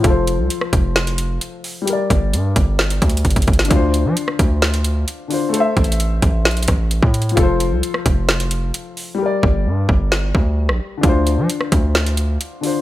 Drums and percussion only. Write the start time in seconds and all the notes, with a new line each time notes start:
0.04 kick, closed hi-hat
0.27 closed hi-hat
0.50 closed hi-hat
0.61 cross-stick
0.73 kick, closed hi-hat
0.96 snare, closed hi-hat
1.07 closed hi-hat
1.18 closed hi-hat
1.41 closed hi-hat
1.64 open hi-hat
1.87 closed hi-hat
2.10 kick, closed hi-hat
2.33 closed hi-hat
2.56 kick, closed hi-hat
2.79 snare, closed hi-hat
2.90 closed hi-hat
3.02 kick, closed hi-hat
3.09 closed hi-hat
3.17 closed hi-hat
3.25 kick, closed hi-hat
3.30 closed hi-hat
3.36 kick, closed hi-hat
3.42 closed hi-hat
3.47 kick, closed hi-hat, open hi-hat
3.53 closed hi-hat
3.59 snare, closed hi-hat
3.65 closed hi-hat
3.71 kick, closed hi-hat
3.94 closed hi-hat
4.17 closed hi-hat
4.28 cross-stick
4.39 kick, closed hi-hat
4.62 snare, closed hi-hat
4.74 closed hi-hat
4.84 closed hi-hat
5.08 closed hi-hat
5.31 open hi-hat
5.54 closed hi-hat
5.77 kick, closed hi-hat
5.84 closed hi-hat
5.92 closed hi-hat
6.00 closed hi-hat
6.22 kick, closed hi-hat
6.45 snare, closed hi-hat
6.51 closed hi-hat
6.57 closed hi-hat
6.63 closed hi-hat
6.68 kick, cross-stick, closed hi-hat
6.91 closed hi-hat
7.03 kick
7.14 closed hi-hat
7.22 closed hi-hat
7.29 closed hi-hat
7.37 kick, closed hi-hat
7.60 closed hi-hat
7.83 closed hi-hat
7.94 cross-stick
8.06 kick, closed hi-hat
8.29 snare, closed hi-hat
8.40 closed hi-hat
8.51 closed hi-hat
8.74 closed hi-hat
8.97 open hi-hat
9.43 kick
9.89 kick
10.12 snare
10.35 kick
10.69 cross-stick
11.03 kick, closed hi-hat
11.27 closed hi-hat
11.50 closed hi-hat
11.61 cross-stick
11.72 kick, closed hi-hat
11.95 snare, closed hi-hat
12.06 closed hi-hat
12.17 closed hi-hat
12.41 closed hi-hat
12.63 open hi-hat